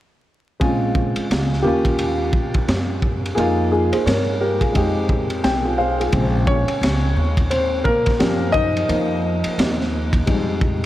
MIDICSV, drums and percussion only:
0, 0, Header, 1, 2, 480
1, 0, Start_track
1, 0, Tempo, 689655
1, 427, Time_signature, 4, 2, 24, 8
1, 7558, End_track
2, 0, Start_track
2, 0, Title_t, "Drums"
2, 425, Note_on_c, 9, 36, 84
2, 425, Note_on_c, 9, 51, 54
2, 494, Note_off_c, 9, 36, 0
2, 494, Note_off_c, 9, 51, 0
2, 662, Note_on_c, 9, 36, 82
2, 731, Note_off_c, 9, 36, 0
2, 807, Note_on_c, 9, 51, 60
2, 877, Note_off_c, 9, 51, 0
2, 912, Note_on_c, 9, 44, 55
2, 912, Note_on_c, 9, 51, 70
2, 918, Note_on_c, 9, 38, 92
2, 981, Note_off_c, 9, 44, 0
2, 981, Note_off_c, 9, 51, 0
2, 988, Note_off_c, 9, 38, 0
2, 1065, Note_on_c, 9, 38, 29
2, 1135, Note_off_c, 9, 38, 0
2, 1287, Note_on_c, 9, 36, 76
2, 1291, Note_on_c, 9, 51, 51
2, 1356, Note_off_c, 9, 36, 0
2, 1360, Note_off_c, 9, 51, 0
2, 1382, Note_on_c, 9, 51, 69
2, 1452, Note_off_c, 9, 51, 0
2, 1621, Note_on_c, 9, 36, 85
2, 1691, Note_off_c, 9, 36, 0
2, 1769, Note_on_c, 9, 51, 46
2, 1773, Note_on_c, 9, 36, 79
2, 1839, Note_off_c, 9, 51, 0
2, 1843, Note_off_c, 9, 36, 0
2, 1869, Note_on_c, 9, 44, 43
2, 1869, Note_on_c, 9, 51, 61
2, 1871, Note_on_c, 9, 38, 100
2, 1938, Note_off_c, 9, 44, 0
2, 1938, Note_off_c, 9, 51, 0
2, 1941, Note_off_c, 9, 38, 0
2, 2104, Note_on_c, 9, 36, 85
2, 2174, Note_off_c, 9, 36, 0
2, 2266, Note_on_c, 9, 51, 52
2, 2336, Note_off_c, 9, 51, 0
2, 2350, Note_on_c, 9, 51, 54
2, 2420, Note_off_c, 9, 51, 0
2, 2733, Note_on_c, 9, 51, 57
2, 2803, Note_off_c, 9, 51, 0
2, 2835, Note_on_c, 9, 44, 58
2, 2835, Note_on_c, 9, 51, 79
2, 2841, Note_on_c, 9, 38, 97
2, 2905, Note_off_c, 9, 44, 0
2, 2905, Note_off_c, 9, 51, 0
2, 2911, Note_off_c, 9, 38, 0
2, 3209, Note_on_c, 9, 36, 78
2, 3214, Note_on_c, 9, 51, 54
2, 3279, Note_off_c, 9, 36, 0
2, 3283, Note_off_c, 9, 51, 0
2, 3307, Note_on_c, 9, 51, 71
2, 3310, Note_on_c, 9, 36, 72
2, 3376, Note_off_c, 9, 51, 0
2, 3380, Note_off_c, 9, 36, 0
2, 3543, Note_on_c, 9, 36, 82
2, 3613, Note_off_c, 9, 36, 0
2, 3689, Note_on_c, 9, 51, 50
2, 3758, Note_off_c, 9, 51, 0
2, 3786, Note_on_c, 9, 44, 46
2, 3786, Note_on_c, 9, 51, 61
2, 3789, Note_on_c, 9, 38, 105
2, 3856, Note_off_c, 9, 44, 0
2, 3856, Note_off_c, 9, 51, 0
2, 3859, Note_off_c, 9, 38, 0
2, 4182, Note_on_c, 9, 51, 51
2, 4252, Note_off_c, 9, 51, 0
2, 4262, Note_on_c, 9, 51, 56
2, 4267, Note_on_c, 9, 36, 97
2, 4332, Note_off_c, 9, 51, 0
2, 4336, Note_off_c, 9, 36, 0
2, 4505, Note_on_c, 9, 36, 89
2, 4574, Note_off_c, 9, 36, 0
2, 4650, Note_on_c, 9, 51, 59
2, 4720, Note_off_c, 9, 51, 0
2, 4754, Note_on_c, 9, 44, 58
2, 4754, Note_on_c, 9, 51, 82
2, 4760, Note_on_c, 9, 38, 99
2, 4824, Note_off_c, 9, 44, 0
2, 4824, Note_off_c, 9, 51, 0
2, 4830, Note_off_c, 9, 38, 0
2, 5130, Note_on_c, 9, 36, 77
2, 5132, Note_on_c, 9, 51, 57
2, 5200, Note_off_c, 9, 36, 0
2, 5202, Note_off_c, 9, 51, 0
2, 5227, Note_on_c, 9, 51, 74
2, 5296, Note_off_c, 9, 51, 0
2, 5465, Note_on_c, 9, 36, 86
2, 5534, Note_off_c, 9, 36, 0
2, 5610, Note_on_c, 9, 51, 52
2, 5616, Note_on_c, 9, 36, 81
2, 5625, Note_on_c, 9, 38, 32
2, 5680, Note_off_c, 9, 51, 0
2, 5685, Note_off_c, 9, 36, 0
2, 5695, Note_off_c, 9, 38, 0
2, 5709, Note_on_c, 9, 44, 50
2, 5709, Note_on_c, 9, 51, 64
2, 5711, Note_on_c, 9, 38, 106
2, 5778, Note_off_c, 9, 44, 0
2, 5778, Note_off_c, 9, 51, 0
2, 5781, Note_off_c, 9, 38, 0
2, 5945, Note_on_c, 9, 36, 85
2, 6015, Note_off_c, 9, 36, 0
2, 6101, Note_on_c, 9, 51, 52
2, 6171, Note_off_c, 9, 51, 0
2, 6189, Note_on_c, 9, 51, 59
2, 6259, Note_off_c, 9, 51, 0
2, 6570, Note_on_c, 9, 51, 66
2, 6640, Note_off_c, 9, 51, 0
2, 6674, Note_on_c, 9, 44, 55
2, 6674, Note_on_c, 9, 51, 79
2, 6680, Note_on_c, 9, 38, 104
2, 6744, Note_off_c, 9, 44, 0
2, 6744, Note_off_c, 9, 51, 0
2, 6750, Note_off_c, 9, 38, 0
2, 6827, Note_on_c, 9, 38, 32
2, 6896, Note_off_c, 9, 38, 0
2, 7050, Note_on_c, 9, 36, 78
2, 7055, Note_on_c, 9, 51, 58
2, 7120, Note_off_c, 9, 36, 0
2, 7125, Note_off_c, 9, 51, 0
2, 7150, Note_on_c, 9, 51, 74
2, 7152, Note_on_c, 9, 36, 73
2, 7220, Note_off_c, 9, 51, 0
2, 7222, Note_off_c, 9, 36, 0
2, 7387, Note_on_c, 9, 36, 90
2, 7457, Note_off_c, 9, 36, 0
2, 7558, End_track
0, 0, End_of_file